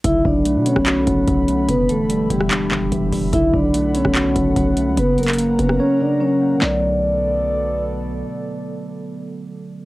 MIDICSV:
0, 0, Header, 1, 6, 480
1, 0, Start_track
1, 0, Key_signature, 2, "minor"
1, 0, Tempo, 410959
1, 50, Time_signature, 4, 2, 24, 8
1, 11505, End_track
2, 0, Start_track
2, 0, Title_t, "Ambient pad"
2, 0, Program_c, 0, 92
2, 51, Note_on_c, 0, 69, 74
2, 51, Note_on_c, 0, 83, 90
2, 52, Note_on_c, 0, 50, 83
2, 52, Note_on_c, 0, 78, 75
2, 1951, Note_off_c, 0, 69, 0
2, 1952, Note_off_c, 0, 78, 0
2, 1970, Note_on_c, 0, 67, 77
2, 1970, Note_on_c, 0, 76, 76
2, 3852, Note_off_c, 0, 83, 0
2, 3871, Note_off_c, 0, 67, 0
2, 3871, Note_off_c, 0, 76, 0
2, 3891, Note_on_c, 0, 69, 75
2, 3891, Note_on_c, 0, 83, 89
2, 3892, Note_on_c, 0, 78, 74
2, 5764, Note_off_c, 0, 50, 0
2, 5791, Note_off_c, 0, 69, 0
2, 5791, Note_off_c, 0, 83, 0
2, 5809, Note_on_c, 0, 70, 75
2, 5810, Note_on_c, 0, 61, 84
2, 5810, Note_on_c, 0, 82, 90
2, 7693, Note_off_c, 0, 78, 0
2, 7710, Note_off_c, 0, 70, 0
2, 7711, Note_off_c, 0, 61, 0
2, 7711, Note_off_c, 0, 82, 0
2, 7729, Note_on_c, 0, 47, 80
2, 7729, Note_on_c, 0, 74, 90
2, 7730, Note_on_c, 0, 59, 76
2, 7730, Note_on_c, 0, 69, 77
2, 11505, Note_off_c, 0, 47, 0
2, 11505, Note_off_c, 0, 59, 0
2, 11505, Note_off_c, 0, 69, 0
2, 11505, Note_off_c, 0, 74, 0
2, 11505, End_track
3, 0, Start_track
3, 0, Title_t, "Vibraphone"
3, 0, Program_c, 1, 11
3, 57, Note_on_c, 1, 64, 101
3, 66, Note_on_c, 1, 76, 82
3, 250, Note_off_c, 1, 64, 0
3, 255, Note_off_c, 1, 76, 0
3, 291, Note_on_c, 1, 62, 82
3, 301, Note_on_c, 1, 74, 61
3, 742, Note_off_c, 1, 62, 0
3, 747, Note_off_c, 1, 74, 0
3, 772, Note_on_c, 1, 61, 87
3, 782, Note_on_c, 1, 73, 69
3, 1924, Note_off_c, 1, 61, 0
3, 1929, Note_off_c, 1, 73, 0
3, 1970, Note_on_c, 1, 59, 108
3, 1979, Note_on_c, 1, 71, 80
3, 2166, Note_off_c, 1, 59, 0
3, 2171, Note_off_c, 1, 71, 0
3, 2211, Note_on_c, 1, 57, 92
3, 2220, Note_on_c, 1, 69, 68
3, 2662, Note_off_c, 1, 57, 0
3, 2667, Note_off_c, 1, 69, 0
3, 2691, Note_on_c, 1, 55, 83
3, 2701, Note_on_c, 1, 67, 62
3, 3844, Note_off_c, 1, 55, 0
3, 3849, Note_off_c, 1, 67, 0
3, 3888, Note_on_c, 1, 64, 113
3, 3898, Note_on_c, 1, 76, 85
3, 4085, Note_off_c, 1, 64, 0
3, 4090, Note_off_c, 1, 76, 0
3, 4126, Note_on_c, 1, 62, 79
3, 4135, Note_on_c, 1, 74, 65
3, 4579, Note_off_c, 1, 62, 0
3, 4584, Note_off_c, 1, 74, 0
3, 4607, Note_on_c, 1, 61, 82
3, 4616, Note_on_c, 1, 73, 67
3, 5762, Note_off_c, 1, 61, 0
3, 5766, Note_off_c, 1, 73, 0
3, 5811, Note_on_c, 1, 59, 99
3, 5821, Note_on_c, 1, 71, 80
3, 6007, Note_off_c, 1, 59, 0
3, 6012, Note_off_c, 1, 71, 0
3, 6054, Note_on_c, 1, 58, 83
3, 6063, Note_on_c, 1, 70, 68
3, 6503, Note_off_c, 1, 58, 0
3, 6508, Note_off_c, 1, 70, 0
3, 6525, Note_on_c, 1, 59, 80
3, 6534, Note_on_c, 1, 71, 57
3, 6723, Note_off_c, 1, 59, 0
3, 6728, Note_off_c, 1, 71, 0
3, 6767, Note_on_c, 1, 61, 84
3, 6776, Note_on_c, 1, 73, 65
3, 6964, Note_off_c, 1, 61, 0
3, 6969, Note_off_c, 1, 73, 0
3, 7014, Note_on_c, 1, 62, 79
3, 7023, Note_on_c, 1, 74, 61
3, 7208, Note_off_c, 1, 62, 0
3, 7213, Note_off_c, 1, 74, 0
3, 7244, Note_on_c, 1, 61, 90
3, 7253, Note_on_c, 1, 73, 70
3, 7698, Note_off_c, 1, 61, 0
3, 7703, Note_off_c, 1, 73, 0
3, 7729, Note_on_c, 1, 74, 86
3, 9123, Note_off_c, 1, 74, 0
3, 11505, End_track
4, 0, Start_track
4, 0, Title_t, "Tine electric piano"
4, 0, Program_c, 2, 4
4, 48, Note_on_c, 2, 50, 90
4, 262, Control_c, 2, 64, 127
4, 293, Note_on_c, 2, 54, 82
4, 531, Note_on_c, 2, 57, 90
4, 764, Note_on_c, 2, 59, 85
4, 1008, Note_on_c, 2, 66, 95
4, 1228, Note_off_c, 2, 50, 0
4, 1242, Note_on_c, 2, 50, 81
4, 1486, Note_off_c, 2, 54, 0
4, 1500, Note_on_c, 2, 54, 86
4, 1723, Note_off_c, 2, 57, 0
4, 1737, Note_on_c, 2, 57, 80
4, 1954, Note_off_c, 2, 50, 0
4, 1967, Note_off_c, 2, 59, 0
4, 1968, Note_on_c, 2, 50, 98
4, 1969, Note_off_c, 2, 66, 0
4, 1973, Note_off_c, 2, 57, 0
4, 1975, Note_off_c, 2, 54, 0
4, 1986, Control_c, 2, 64, 0
4, 2209, Control_c, 2, 64, 127
4, 2209, Note_on_c, 2, 52, 84
4, 2447, Note_on_c, 2, 55, 98
4, 2695, Note_on_c, 2, 59, 84
4, 2930, Note_on_c, 2, 62, 110
4, 3156, Note_off_c, 2, 50, 0
4, 3170, Note_on_c, 2, 50, 82
4, 3399, Note_off_c, 2, 52, 0
4, 3413, Note_on_c, 2, 52, 81
4, 3634, Note_off_c, 2, 55, 0
4, 3648, Note_on_c, 2, 55, 89
4, 3875, Note_off_c, 2, 50, 0
4, 3889, Note_off_c, 2, 55, 0
4, 3889, Note_on_c, 2, 50, 94
4, 3890, Note_off_c, 2, 62, 0
4, 3892, Note_off_c, 2, 52, 0
4, 3893, Note_off_c, 2, 59, 0
4, 3905, Control_c, 2, 64, 0
4, 4118, Control_c, 2, 64, 127
4, 4124, Note_on_c, 2, 54, 80
4, 4371, Note_on_c, 2, 57, 98
4, 4610, Note_on_c, 2, 59, 92
4, 4856, Note_on_c, 2, 66, 91
4, 5077, Note_off_c, 2, 50, 0
4, 5091, Note_on_c, 2, 50, 83
4, 5323, Note_off_c, 2, 54, 0
4, 5337, Note_on_c, 2, 54, 91
4, 5559, Note_off_c, 2, 57, 0
4, 5573, Note_on_c, 2, 57, 87
4, 5810, Note_off_c, 2, 50, 0
4, 5810, Note_off_c, 2, 59, 0
4, 5812, Note_off_c, 2, 57, 0
4, 5813, Note_off_c, 2, 54, 0
4, 5813, Note_off_c, 2, 66, 0
4, 5813, Note_on_c, 2, 49, 92
4, 5825, Control_c, 2, 64, 0
4, 5996, Control_c, 2, 64, 127
4, 6056, Note_on_c, 2, 54, 80
4, 6285, Note_on_c, 2, 58, 95
4, 6533, Note_on_c, 2, 61, 85
4, 6773, Note_on_c, 2, 73, 96
4, 7008, Note_off_c, 2, 49, 0
4, 7022, Note_on_c, 2, 49, 78
4, 7234, Note_off_c, 2, 54, 0
4, 7248, Note_on_c, 2, 54, 84
4, 7481, Note_off_c, 2, 58, 0
4, 7495, Note_on_c, 2, 58, 82
4, 7660, Note_on_c, 2, 50, 86
4, 7692, Note_off_c, 2, 54, 0
4, 7706, Note_on_c, 2, 54, 80
4, 7731, Note_off_c, 2, 73, 0
4, 7732, Note_off_c, 2, 61, 0
4, 7733, Note_off_c, 2, 58, 0
4, 7736, Note_off_c, 2, 49, 0
4, 7746, Control_c, 2, 64, 0
4, 7753, Note_on_c, 2, 57, 77
4, 7800, Note_on_c, 2, 59, 96
4, 7952, Control_c, 2, 64, 127
4, 11505, Note_off_c, 2, 50, 0
4, 11505, Note_off_c, 2, 54, 0
4, 11505, Note_off_c, 2, 57, 0
4, 11505, Note_off_c, 2, 59, 0
4, 11505, End_track
5, 0, Start_track
5, 0, Title_t, "808-style bass"
5, 0, Program_c, 3, 38
5, 50, Note_on_c, 3, 35, 114
5, 281, Note_off_c, 3, 35, 0
5, 291, Note_on_c, 3, 35, 111
5, 651, Note_on_c, 3, 47, 97
5, 669, Note_off_c, 3, 35, 0
5, 879, Note_off_c, 3, 47, 0
5, 889, Note_on_c, 3, 35, 102
5, 1235, Note_off_c, 3, 35, 0
5, 1250, Note_on_c, 3, 35, 105
5, 1481, Note_off_c, 3, 35, 0
5, 1490, Note_on_c, 3, 35, 109
5, 1951, Note_off_c, 3, 35, 0
5, 1970, Note_on_c, 3, 28, 114
5, 2661, Note_off_c, 3, 28, 0
5, 2689, Note_on_c, 3, 28, 105
5, 3150, Note_off_c, 3, 28, 0
5, 3170, Note_on_c, 3, 28, 102
5, 3401, Note_off_c, 3, 28, 0
5, 3409, Note_on_c, 3, 28, 110
5, 3640, Note_off_c, 3, 28, 0
5, 3650, Note_on_c, 3, 28, 103
5, 3880, Note_off_c, 3, 28, 0
5, 3890, Note_on_c, 3, 35, 117
5, 4120, Note_off_c, 3, 35, 0
5, 4130, Note_on_c, 3, 35, 100
5, 4706, Note_off_c, 3, 35, 0
5, 4729, Note_on_c, 3, 35, 110
5, 5075, Note_off_c, 3, 35, 0
5, 5090, Note_on_c, 3, 35, 106
5, 5320, Note_off_c, 3, 35, 0
5, 5329, Note_on_c, 3, 35, 110
5, 5689, Note_on_c, 3, 37, 101
5, 5707, Note_off_c, 3, 35, 0
5, 5804, Note_off_c, 3, 37, 0
5, 5809, Note_on_c, 3, 30, 110
5, 6501, Note_off_c, 3, 30, 0
5, 6528, Note_on_c, 3, 30, 109
5, 6769, Note_off_c, 3, 30, 0
5, 7731, Note_on_c, 3, 35, 111
5, 9604, Note_off_c, 3, 35, 0
5, 11505, End_track
6, 0, Start_track
6, 0, Title_t, "Drums"
6, 50, Note_on_c, 9, 36, 125
6, 50, Note_on_c, 9, 42, 91
6, 167, Note_off_c, 9, 36, 0
6, 167, Note_off_c, 9, 42, 0
6, 291, Note_on_c, 9, 36, 96
6, 408, Note_off_c, 9, 36, 0
6, 531, Note_on_c, 9, 42, 90
6, 647, Note_off_c, 9, 42, 0
6, 770, Note_on_c, 9, 42, 68
6, 887, Note_off_c, 9, 42, 0
6, 889, Note_on_c, 9, 36, 86
6, 889, Note_on_c, 9, 37, 95
6, 1006, Note_off_c, 9, 36, 0
6, 1006, Note_off_c, 9, 37, 0
6, 1010, Note_on_c, 9, 39, 123
6, 1010, Note_on_c, 9, 42, 82
6, 1127, Note_off_c, 9, 39, 0
6, 1127, Note_off_c, 9, 42, 0
6, 1250, Note_on_c, 9, 36, 99
6, 1250, Note_on_c, 9, 42, 67
6, 1367, Note_off_c, 9, 36, 0
6, 1367, Note_off_c, 9, 42, 0
6, 1490, Note_on_c, 9, 36, 107
6, 1490, Note_on_c, 9, 42, 74
6, 1606, Note_off_c, 9, 42, 0
6, 1607, Note_off_c, 9, 36, 0
6, 1730, Note_on_c, 9, 42, 74
6, 1847, Note_off_c, 9, 42, 0
6, 1969, Note_on_c, 9, 42, 90
6, 1970, Note_on_c, 9, 36, 120
6, 2086, Note_off_c, 9, 42, 0
6, 2087, Note_off_c, 9, 36, 0
6, 2210, Note_on_c, 9, 42, 77
6, 2326, Note_off_c, 9, 42, 0
6, 2449, Note_on_c, 9, 42, 88
6, 2566, Note_off_c, 9, 42, 0
6, 2689, Note_on_c, 9, 36, 94
6, 2690, Note_on_c, 9, 42, 72
6, 2805, Note_off_c, 9, 36, 0
6, 2807, Note_off_c, 9, 42, 0
6, 2809, Note_on_c, 9, 37, 94
6, 2925, Note_off_c, 9, 37, 0
6, 2930, Note_on_c, 9, 39, 125
6, 2930, Note_on_c, 9, 42, 84
6, 3046, Note_off_c, 9, 42, 0
6, 3047, Note_off_c, 9, 39, 0
6, 3169, Note_on_c, 9, 39, 99
6, 3170, Note_on_c, 9, 36, 102
6, 3286, Note_off_c, 9, 39, 0
6, 3287, Note_off_c, 9, 36, 0
6, 3409, Note_on_c, 9, 36, 104
6, 3409, Note_on_c, 9, 42, 75
6, 3526, Note_off_c, 9, 36, 0
6, 3526, Note_off_c, 9, 42, 0
6, 3649, Note_on_c, 9, 36, 96
6, 3649, Note_on_c, 9, 46, 74
6, 3766, Note_off_c, 9, 36, 0
6, 3766, Note_off_c, 9, 46, 0
6, 3889, Note_on_c, 9, 42, 90
6, 3890, Note_on_c, 9, 36, 121
6, 4006, Note_off_c, 9, 36, 0
6, 4006, Note_off_c, 9, 42, 0
6, 4130, Note_on_c, 9, 36, 89
6, 4246, Note_off_c, 9, 36, 0
6, 4369, Note_on_c, 9, 42, 90
6, 4486, Note_off_c, 9, 42, 0
6, 4609, Note_on_c, 9, 42, 69
6, 4726, Note_off_c, 9, 42, 0
6, 4728, Note_on_c, 9, 36, 85
6, 4728, Note_on_c, 9, 37, 92
6, 4845, Note_off_c, 9, 36, 0
6, 4845, Note_off_c, 9, 37, 0
6, 4849, Note_on_c, 9, 42, 84
6, 4850, Note_on_c, 9, 39, 127
6, 4966, Note_off_c, 9, 39, 0
6, 4966, Note_off_c, 9, 42, 0
6, 5089, Note_on_c, 9, 42, 68
6, 5090, Note_on_c, 9, 36, 97
6, 5206, Note_off_c, 9, 36, 0
6, 5206, Note_off_c, 9, 42, 0
6, 5329, Note_on_c, 9, 36, 106
6, 5329, Note_on_c, 9, 42, 75
6, 5446, Note_off_c, 9, 36, 0
6, 5446, Note_off_c, 9, 42, 0
6, 5569, Note_on_c, 9, 42, 75
6, 5686, Note_off_c, 9, 42, 0
6, 5809, Note_on_c, 9, 36, 123
6, 5809, Note_on_c, 9, 42, 94
6, 5926, Note_off_c, 9, 36, 0
6, 5926, Note_off_c, 9, 42, 0
6, 6050, Note_on_c, 9, 42, 47
6, 6109, Note_off_c, 9, 42, 0
6, 6109, Note_on_c, 9, 42, 60
6, 6169, Note_off_c, 9, 42, 0
6, 6169, Note_on_c, 9, 39, 69
6, 6169, Note_on_c, 9, 42, 70
6, 6230, Note_off_c, 9, 42, 0
6, 6230, Note_on_c, 9, 42, 82
6, 6285, Note_off_c, 9, 39, 0
6, 6290, Note_off_c, 9, 42, 0
6, 6290, Note_on_c, 9, 42, 88
6, 6406, Note_off_c, 9, 42, 0
6, 6528, Note_on_c, 9, 36, 94
6, 6529, Note_on_c, 9, 42, 69
6, 6645, Note_off_c, 9, 36, 0
6, 6646, Note_off_c, 9, 42, 0
6, 6648, Note_on_c, 9, 37, 91
6, 6765, Note_off_c, 9, 37, 0
6, 7730, Note_on_c, 9, 38, 105
6, 7730, Note_on_c, 9, 39, 88
6, 7847, Note_off_c, 9, 38, 0
6, 7847, Note_off_c, 9, 39, 0
6, 11505, End_track
0, 0, End_of_file